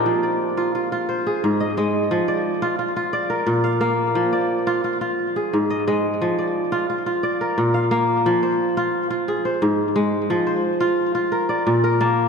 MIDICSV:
0, 0, Header, 1, 2, 480
1, 0, Start_track
1, 0, Tempo, 341491
1, 69, Time_signature, 12, 3, 24, 8
1, 17266, End_track
2, 0, Start_track
2, 0, Title_t, "Kora"
2, 0, Program_c, 0, 46
2, 0, Note_on_c, 0, 58, 67
2, 0, Note_on_c, 0, 60, 62
2, 0, Note_on_c, 0, 62, 63
2, 0, Note_on_c, 0, 63, 57
2, 0, Note_on_c, 0, 65, 62
2, 0, Note_on_c, 0, 67, 62
2, 0, Note_on_c, 0, 68, 55
2, 0, Note_on_c, 0, 70, 56
2, 0, Note_on_c, 0, 72, 60
2, 82, Note_on_c, 0, 53, 66
2, 324, Note_on_c, 0, 74, 49
2, 409, Note_off_c, 0, 63, 0
2, 547, Note_off_c, 0, 72, 0
2, 800, Note_off_c, 0, 65, 0
2, 806, Note_on_c, 0, 65, 70
2, 904, Note_off_c, 0, 70, 0
2, 1047, Note_off_c, 0, 65, 0
2, 1053, Note_on_c, 0, 65, 55
2, 1225, Note_off_c, 0, 67, 0
2, 1270, Note_off_c, 0, 68, 0
2, 1289, Note_off_c, 0, 65, 0
2, 1295, Note_on_c, 0, 65, 64
2, 1529, Note_on_c, 0, 72, 57
2, 1585, Note_off_c, 0, 53, 0
2, 1779, Note_on_c, 0, 68, 61
2, 1882, Note_off_c, 0, 74, 0
2, 2021, Note_on_c, 0, 44, 69
2, 2197, Note_off_c, 0, 62, 0
2, 2251, Note_off_c, 0, 60, 0
2, 2254, Note_on_c, 0, 75, 59
2, 2296, Note_off_c, 0, 58, 0
2, 2493, Note_off_c, 0, 75, 0
2, 2493, Note_on_c, 0, 56, 75
2, 2498, Note_on_c, 0, 75, 61
2, 2966, Note_on_c, 0, 53, 67
2, 3030, Note_off_c, 0, 44, 0
2, 3030, Note_off_c, 0, 56, 0
2, 3199, Note_off_c, 0, 72, 0
2, 3205, Note_on_c, 0, 74, 54
2, 3290, Note_off_c, 0, 75, 0
2, 3422, Note_off_c, 0, 65, 0
2, 3684, Note_on_c, 0, 65, 80
2, 3697, Note_off_c, 0, 68, 0
2, 3913, Note_off_c, 0, 65, 0
2, 3918, Note_on_c, 0, 65, 54
2, 4162, Note_off_c, 0, 65, 0
2, 4167, Note_on_c, 0, 65, 61
2, 4393, Note_off_c, 0, 74, 0
2, 4399, Note_on_c, 0, 74, 60
2, 4475, Note_off_c, 0, 53, 0
2, 4635, Note_on_c, 0, 70, 57
2, 4871, Note_on_c, 0, 46, 73
2, 5114, Note_on_c, 0, 77, 65
2, 5347, Note_off_c, 0, 77, 0
2, 5349, Note_on_c, 0, 58, 73
2, 5353, Note_on_c, 0, 77, 63
2, 5837, Note_on_c, 0, 53, 72
2, 5918, Note_off_c, 0, 46, 0
2, 5956, Note_off_c, 0, 74, 0
2, 6080, Note_on_c, 0, 74, 50
2, 6295, Note_off_c, 0, 65, 0
2, 6424, Note_off_c, 0, 70, 0
2, 6562, Note_on_c, 0, 65, 78
2, 6756, Note_off_c, 0, 77, 0
2, 6801, Note_off_c, 0, 65, 0
2, 6806, Note_on_c, 0, 65, 58
2, 7037, Note_off_c, 0, 65, 0
2, 7043, Note_on_c, 0, 65, 62
2, 7359, Note_off_c, 0, 53, 0
2, 7536, Note_on_c, 0, 68, 58
2, 7638, Note_off_c, 0, 74, 0
2, 7779, Note_on_c, 0, 44, 64
2, 8017, Note_on_c, 0, 75, 62
2, 8061, Note_off_c, 0, 58, 0
2, 8253, Note_off_c, 0, 75, 0
2, 8258, Note_on_c, 0, 56, 74
2, 8259, Note_on_c, 0, 75, 60
2, 8736, Note_on_c, 0, 53, 67
2, 8799, Note_off_c, 0, 44, 0
2, 8799, Note_off_c, 0, 56, 0
2, 8975, Note_on_c, 0, 74, 55
2, 9060, Note_off_c, 0, 75, 0
2, 9171, Note_off_c, 0, 65, 0
2, 9445, Note_on_c, 0, 65, 72
2, 9453, Note_off_c, 0, 68, 0
2, 9688, Note_off_c, 0, 65, 0
2, 9693, Note_on_c, 0, 65, 55
2, 9922, Note_off_c, 0, 65, 0
2, 9927, Note_on_c, 0, 65, 61
2, 10159, Note_off_c, 0, 74, 0
2, 10165, Note_on_c, 0, 74, 59
2, 10238, Note_off_c, 0, 53, 0
2, 10414, Note_on_c, 0, 70, 55
2, 10650, Note_on_c, 0, 46, 73
2, 10882, Note_on_c, 0, 77, 57
2, 11116, Note_off_c, 0, 77, 0
2, 11120, Note_on_c, 0, 58, 75
2, 11121, Note_on_c, 0, 77, 60
2, 11609, Note_on_c, 0, 53, 76
2, 11674, Note_off_c, 0, 46, 0
2, 11722, Note_off_c, 0, 74, 0
2, 11845, Note_on_c, 0, 72, 60
2, 12055, Note_off_c, 0, 65, 0
2, 12203, Note_off_c, 0, 70, 0
2, 12328, Note_on_c, 0, 65, 77
2, 12525, Note_off_c, 0, 77, 0
2, 12792, Note_off_c, 0, 65, 0
2, 12797, Note_on_c, 0, 65, 63
2, 13045, Note_on_c, 0, 68, 63
2, 13110, Note_off_c, 0, 53, 0
2, 13279, Note_off_c, 0, 72, 0
2, 13284, Note_on_c, 0, 72, 60
2, 13521, Note_on_c, 0, 44, 74
2, 13831, Note_off_c, 0, 58, 0
2, 13994, Note_on_c, 0, 56, 76
2, 14479, Note_on_c, 0, 53, 82
2, 14546, Note_off_c, 0, 44, 0
2, 14546, Note_off_c, 0, 56, 0
2, 14706, Note_off_c, 0, 72, 0
2, 14712, Note_on_c, 0, 72, 59
2, 14925, Note_off_c, 0, 65, 0
2, 14963, Note_off_c, 0, 68, 0
2, 15187, Note_on_c, 0, 65, 84
2, 15663, Note_off_c, 0, 65, 0
2, 15669, Note_on_c, 0, 65, 70
2, 15908, Note_on_c, 0, 70, 57
2, 15982, Note_off_c, 0, 53, 0
2, 16152, Note_on_c, 0, 74, 60
2, 16381, Note_off_c, 0, 72, 0
2, 16398, Note_on_c, 0, 46, 74
2, 16633, Note_off_c, 0, 70, 0
2, 16639, Note_on_c, 0, 70, 67
2, 16875, Note_on_c, 0, 58, 80
2, 16875, Note_on_c, 0, 81, 64
2, 17266, Note_off_c, 0, 46, 0
2, 17266, Note_off_c, 0, 58, 0
2, 17266, Note_off_c, 0, 65, 0
2, 17266, Note_off_c, 0, 70, 0
2, 17266, Note_off_c, 0, 74, 0
2, 17266, Note_off_c, 0, 81, 0
2, 17266, End_track
0, 0, End_of_file